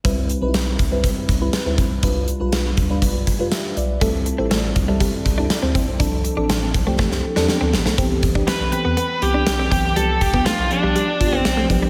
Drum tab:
HH |x-x-x-x-x-x-x-x-|x-x-x-x-x-x-x-x-|x-x-x-x-x-x-x-x-|x-x-x-x---------|
SD |----o-------o---|----o-------o---|----o-------o---|----o---oo-oo-oo|
BD |o-----o-o-o---o-|o-----o-o-o-----|o-----o-o-o---o-|o-----o-o-------|

HH |x-x-x-x-x-x-x-x-|x-x-x-x-x-x-x-x-|
SD |----o-------o---|----o-------o---|
BD |o-oo----------o-|--oo------o---o-|